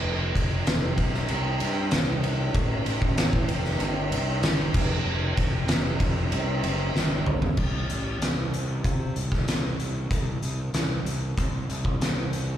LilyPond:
<<
  \new Staff \with { instrumentName = "Fingered electric bass" } { \clef bass \time 4/4 \key g \mixolydian \tempo 4 = 95 f,,8 f,,8 f,,8 b,,8 c,8 g,8 c,4 | a,,8 a,,8 a,,8 f,,8 g,,8 c,8 g,,8 f,,8 | f,,8 f,,8 f,,8 f,,8 c,8 fis,,8 g,,4 | c,8 a,,8 c,4 c8 c,8 c,8 c,8 |
c,8 c,8 c,8 c,8 c,8 c,8 c,4 | }
  \new DrumStaff \with { instrumentName = "Drums" } \drummode { \time 4/4 r8 <bd cymr>8 <cymr sn>8 <bd cymr>16 sn16 cymr8 cymr8 <cymr sn>8 cymr8 | <bd cymr>8 cymr16 bd16 <cymr sn>16 bd16 cymr16 sn16 cymr8 cymr8 <cymr sn>8 <cymc bd>8 | r8 <bd cymr>8 <cymr sn>8 <bd cymr>8 cymr8 cymr8 sn8 toml16 tomfh16 | <cymc bd>8 hh8 <hh sn>8 hh8 <hh bd>8 hh16 <bd sn>16 <hh sn>8 hh8 |
<hh bd>8 hh8 <hh sn>8 hh8 <hh bd>8 hh16 bd16 <hh sn>8 hh8 | }
>>